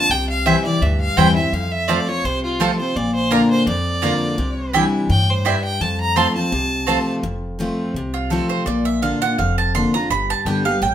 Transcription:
0.00 0.10 D4 soft
0.00 0.12 A5 loud
0.10 0.54 C2 medium
0.10 0.79 C3 medium
0.10 0.29 G5 medium
0.30 0.47 F5 loud
0.46 0.64 E3 medium
0.46 0.65 G3 medium
0.46 0.55 C4 medium
0.46 0.65 C4 medium
0.46 0.55 E4 medium
0.46 0.64 E4 medium
0.46 0.56 C5 medium
0.46 0.64 E5 medium
0.46 0.56 G5 medium
0.65 0.82 C4 medium
0.65 0.81 E4 medium
0.65 0.83 D5 loud
0.81 1.12 D2 medium
0.81 1.50 G2 medium
0.81 1.00 E5 medium
1.01 1.19 F5 loud
1.17 1.48 E2 medium
1.17 1.36 E3 medium
1.17 1.36 G3 medium
1.17 1.27 C4 medium
1.17 1.36 C4 loud
1.17 1.27 E4 medium
1.17 1.35 E4 medium
1.17 1.27 C5 medium
1.17 1.35 G5 loud
1.17 1.27 G5 loud
1.36 1.53 C4 medium
1.36 1.52 E4 medium
1.36 1.55 E5 medium
1.53 1.97 F2 medium
1.53 2.21 F2 medium
1.53 1.73 F5 medium
1.72 1.89 E5 loud
1.88 2.07 F3 medium
1.88 2.07 A3 medium
1.88 1.98 C4 medium
1.88 2.08 C4 medium
1.88 1.98 F4 medium
1.88 2.07 F4 medium
1.88 1.98 C5 loud
1.88 2.09 D5 medium
1.88 1.99 A5 medium
2.08 2.25 C4 soft
2.08 2.24 F4 medium
2.08 2.26 C#5 loud
2.24 2.68 C2 medium
2.24 2.93 C3 medium
2.24 2.43 C5 medium
2.44 2.62 F4 medium
2.60 2.78 F3 medium
2.60 2.79 A3 medium
2.60 2.70 C4 medium
2.60 2.79 C4 medium
2.60 2.70 F4 loud
2.60 2.79 F4 loud
2.60 2.79 A4 medium
2.60 2.70 C5 loud
2.60 2.70 A5 loud
2.79 2.96 C4 soft
2.79 2.95 F4 medium
2.79 2.97 C5 medium
2.96 3.40 A#1 medium
2.96 3.64 A#2 medium
2.96 3.14 D5 medium
3.15 3.33 C5 medium
3.31 3.65 D3 medium
3.31 3.41 A#3 medium
3.31 3.65 A#3 medium
3.31 3.66 D4 medium
3.31 3.41 F4 medium
3.31 3.66 F4 loud
3.31 3.50 A#4 medium
3.31 3.41 D5 medium
3.31 3.41 A#5 loud
3.51 3.66 C5 loud
3.67 4.11 F2 medium
3.67 4.35 F2 medium
3.67 4.70 D5 medium
4.02 4.37 D3 medium
4.02 4.12 A#3 medium
4.02 4.37 A#3 medium
4.02 4.37 D4 loud
4.02 4.12 F4 loud
4.02 4.38 F4 loud
4.02 4.12 D5 medium
4.02 4.12 A#5 medium
4.38 4.82 C2 medium
4.38 5.06 C3 loud
4.73 5.08 E3 medium
4.73 5.08 G3 medium
4.73 4.83 C4 medium
4.73 5.08 D4 medium
4.73 4.83 E4 medium
4.73 5.09 E4 medium
4.73 4.84 D5 medium
4.73 4.84 G5 loud
5.09 5.53 G2 medium
5.09 5.44 A2 medium
5.09 5.31 G5 loud
5.30 5.48 C5 medium
5.45 5.80 G2 medium
5.45 5.55 C4 medium
5.45 5.55 E4 loud
5.45 5.55 D5 loud
5.45 5.64 E5 medium
5.45 5.55 G5 medium
5.64 5.82 G5 medium
5.81 6.25 F2 medium
5.81 6.49 F2 medium
5.81 6.00 A5 medium
6.01 6.18 A#5 medium
6.16 6.35 F3 medium
6.16 6.35 A3 medium
6.16 6.26 C4 medium
6.16 6.35 C4 medium
6.16 6.26 F4 medium
6.16 6.35 F4 medium
6.16 6.26 C5 medium
6.16 6.27 A5 loud
6.16 6.35 C6 loud
6.35 6.53 C4 soft
6.35 6.52 F4 medium
6.35 7.11 A5 medium
6.52 6.96 C2 medium
6.52 7.20 C3 medium
6.87 7.22 F3 medium
6.87 7.22 A3 medium
6.87 6.97 C4 medium
6.87 7.23 C4 medium
6.87 6.97 F4 medium
6.87 7.23 F4 medium
6.87 6.97 C5 medium
6.87 6.98 A5 loud
7.23 7.67 F1 medium
7.23 7.92 F2 medium
7.59 7.93 F3 medium
7.59 7.94 A3 medium
7.59 7.94 C4 medium
7.59 7.94 F4 loud
7.94 8.39 C2 medium
7.94 8.64 C3 medium
8.14 8.30 F4 medium
8.30 8.65 F3 medium
8.30 8.65 A3 medium
8.30 8.66 C4 loud
8.30 8.66 F4 loud
8.30 8.49 A4 medium
8.49 8.65 C5 medium
8.66 9.11 A#1 medium
8.66 9.35 A#2 loud
8.66 8.85 D5 medium
8.85 9.02 E5 medium
9.02 9.21 D3 medium
9.02 9.21 A#3 medium
9.02 9.21 D4 medium
9.02 9.21 F4 medium
9.02 9.21 F5 medium
9.22 9.39 D4 medium
9.22 9.38 F4 medium
9.22 9.38 F#5 loud
9.38 9.83 F1 medium
9.38 10.07 F2 medium
9.38 9.57 F5 medium
9.58 9.74 A5 medium
9.75 9.93 D3 medium
9.75 9.93 A#3 medium
9.75 9.94 D4 loud
9.75 9.94 F4 loud
9.75 9.93 C6 loud
9.94 10.11 D4 soft
9.94 10.10 F4 medium
9.94 10.10 A#5 loud
10.10 10.32 G1 medium
10.10 10.80 G2 medium
10.10 10.29 B5 loud
10.30 10.46 A5 loud
10.45 10.76 G1 medium
10.45 10.65 D3 loud
10.45 10.65 G3 medium
10.45 10.65 B3 medium
10.45 10.64 G4 medium
10.45 10.65 G5 medium
10.65 10.82 B3 medium
10.65 10.81 G4 medium
10.65 10.81 F5 loud
10.82 10.95 A1 medium
10.82 10.95 A2 medium
10.82 10.95 G5 medium

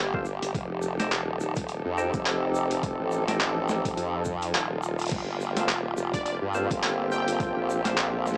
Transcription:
0.00 0.40 G1 loud
0.00 0.51 A#3 medium
0.00 0.50 F4 loud
0.00 2.79 G4 medium
0.14 0.27 A#3 medium
0.14 0.27 C4 medium
0.14 0.27 F4 medium
0.14 0.27 A4 medium
0.14 kick loud
0.25 shaker medium
0.42 0.52 G1 loud
0.42 closed hi-hat medium
0.42 shaker medium
0.54 1.14 F1 loud
0.54 5.08 F3 medium
0.54 5.08 D#4 medium
0.54 5.08 A4 loud
0.54 kick loud
0.54 closed hi-hat soft
0.54 shaker soft
0.82 shaker medium
0.99 1.12 C4 medium
0.99 1.12 D#4 medium
0.99 1.12 G4 medium
0.99 1.12 A4 medium
0.99 snare soft
0.99 closed hi-hat medium
0.99 shaker soft
1.11 1.38 E1 loud
1.11 clap loud
1.11 closed hi-hat medium
1.11 shaker soft
1.40 1.83 D#1 loud
1.40 shaker medium
1.55 kick loud
1.55 closed hi-hat medium
1.55 shaker soft
1.69 closed hi-hat medium
1.69 shaker soft
1.85 2.11 F2 loud
1.98 3.24 C4 medium
1.98 3.24 D#4 medium
1.98 3.24 G4 medium
1.98 3.24 A4 loud
1.98 shaker medium
2.14 2.97 F1 loud
2.14 kick loud
2.14 closed hi-hat medium
2.14 shaker medium
2.26 clap loud
2.26 closed hi-hat medium
2.26 shaker soft
2.55 shaker medium
2.71 closed hi-hat medium
2.71 shaker soft
2.83 8.38 F4 medium
2.83 kick loud
2.83 closed hi-hat medium
2.83 shaker soft
2.99 3.83 A1 loud
3.11 shaker medium
3.28 4.23 C4 medium
3.28 4.23 D#4 medium
3.28 4.23 G4 medium
3.28 4.23 A4 medium
3.28 snare soft
3.28 closed hi-hat medium
3.28 shaker soft
3.40 clap loud
3.40 closed hi-hat medium
3.40 shaker soft
3.69 snare soft
3.69 shaker medium
3.85 3.95 D#1 loud
3.85 kick loud
3.85 closed hi-hat medium
3.85 shaker soft
3.97 4.53 F2 loud
3.97 closed hi-hat medium
3.97 shaker soft
4.25 kick medium
4.25 shaker medium
4.42 closed hi-hat medium
4.42 shaker medium
4.54 5.10 D#1 medium
4.54 clap loud
4.54 closed hi-hat medium
4.54 shaker soft
4.83 shaker medium
4.99 closed hi-hat soft
4.99 shaker soft
5.02 closed hi-hat soft
5.06 closed hi-hat soft
5.08 closed hi-hat medium
5.10 5.95 G1 loud
5.10 8.38 A#3 medium
5.10 8.38 G4 loud
5.10 kick loud
5.10 closed hi-hat medium
5.10 shaker soft
5.12 closed hi-hat medium
5.12 crash medium
5.41 shaker medium
5.57 5.70 A#3 medium
5.57 5.70 C4 medium
5.57 5.70 F4 medium
5.57 5.70 A4 medium
5.57 snare soft
5.57 closed hi-hat medium
5.57 shaker medium
5.69 clap loud
5.69 closed hi-hat medium
5.69 shaker soft
5.97 6.40 F1 loud
5.97 shaker medium
6.13 6.21 D5 medium
6.13 kick loud
6.13 closed hi-hat medium
6.13 shaker medium
6.26 6.36 D5 medium
6.26 closed hi-hat medium
6.26 shaker soft
6.42 6.68 G2 medium
6.54 7.81 A#3 medium
6.54 7.81 C4 medium
6.54 7.81 F4 medium
6.54 7.81 A4 loud
6.54 shaker medium
6.71 7.54 G1 loud
6.71 kick loud
6.71 closed hi-hat medium
6.71 shaker medium
6.83 clap loud
6.83 closed hi-hat medium
6.83 shaker soft
7.12 7.69 G5 loud
7.12 shaker medium
7.28 closed hi-hat medium
7.28 shaker medium
7.40 kick loud
7.40 closed hi-hat medium
7.40 shaker soft
7.56 8.38 A#1 medium
7.70 shaker loud
7.85 8.38 A#3 medium
7.85 8.38 C4 medium
7.85 8.38 F4 medium
7.85 8.38 A4 loud
7.85 snare soft
7.85 closed hi-hat medium
7.85 shaker soft
7.97 clap loud
7.97 closed hi-hat medium
7.97 shaker soft
8.26 snare soft
8.26 shaker loud
8.32 snare soft

